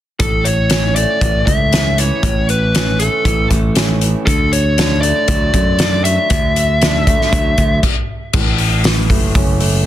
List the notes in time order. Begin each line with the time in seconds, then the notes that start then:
0.20 A1 A2 A4, kick, closed hi-hat
0.44 C#5, closed hi-hat
0.70 C#4, snare, closed hi-hat
0.96 A3 D5, closed hi-hat
1.21 A1 E3, kick, closed hi-hat
1.46 C#2 A3 E5, kick, closed hi-hat
1.72 C#4, snare, closed hi-hat
1.98 E3 C#5, closed hi-hat
2.23 A1 A2, kick, closed hi-hat
2.49 B4, closed hi-hat
2.75 C#4, snare, closed hi-hat
2.99 A3 A4, closed hi-hat
3.25 A1 E3, kick, closed hi-hat
3.51 A1 A3, kick, closed hi-hat
3.75 C#4, snare, closed hi-hat
4.01 E3, closed hi-hat
4.26 D2 D3 A4, kick, closed hi-hat
4.53 C#5, closed hi-hat
4.78 D4, snare, closed hi-hat
5.01 A3 D5, closed hi-hat
5.28 D2 F#3, kick, closed hi-hat
5.54 F#2 A3, kick, closed hi-hat
5.79 D4, snare, closed hi-hat
6.04 F#3 E5, closed hi-hat
6.30 D2 D3, kick, closed hi-hat
6.56 closed hi-hat
6.82 D4, snare, closed hi-hat
7.07 A3, kick, closed hi-hat
7.21 snare
7.32 D2 F#3, kick, closed hi-hat
7.58 D2 A3, kick, closed hi-hat
7.83 kick, crash
8.33 A1 A2, kick, crash
8.58 open hi-hat
8.84 E3, snare, open hi-hat
9.10 F#1 A3, kick, open hi-hat
9.35 F#1 C#4, kick, open hi-hat
9.60 A3, open hi-hat